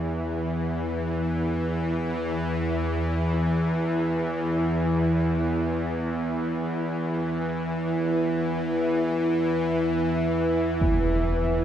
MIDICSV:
0, 0, Header, 1, 5, 480
1, 0, Start_track
1, 0, Tempo, 500000
1, 11179, End_track
2, 0, Start_track
2, 0, Title_t, "Ambient pad"
2, 0, Program_c, 0, 92
2, 3190, Note_on_c, 0, 64, 72
2, 5001, Note_on_c, 0, 71, 73
2, 6069, Note_on_c, 0, 76, 72
2, 11179, Note_off_c, 0, 64, 0
2, 11179, Note_off_c, 0, 71, 0
2, 11179, Note_off_c, 0, 76, 0
2, 11179, End_track
3, 0, Start_track
3, 0, Title_t, "Singing bowl"
3, 0, Program_c, 1, 14
3, 0, Note_on_c, 1, 64, 57
3, 3189, Note_off_c, 1, 64, 0
3, 3200, Note_on_c, 1, 64, 60
3, 11179, Note_off_c, 1, 64, 0
3, 11179, End_track
4, 0, Start_track
4, 0, Title_t, "Synth drone"
4, 0, Program_c, 2, 95
4, 0, Note_on_c, 2, 40, 58
4, 0, Note_on_c, 2, 52, 60
4, 11179, Note_off_c, 2, 40, 0
4, 11179, Note_off_c, 2, 52, 0
4, 11179, End_track
5, 0, Start_track
5, 0, Title_t, "Impact"
5, 0, Program_c, 3, 103
5, 10381, Note_on_c, 3, 60, 56
5, 10620, Note_off_c, 3, 60, 0
5, 11179, End_track
0, 0, End_of_file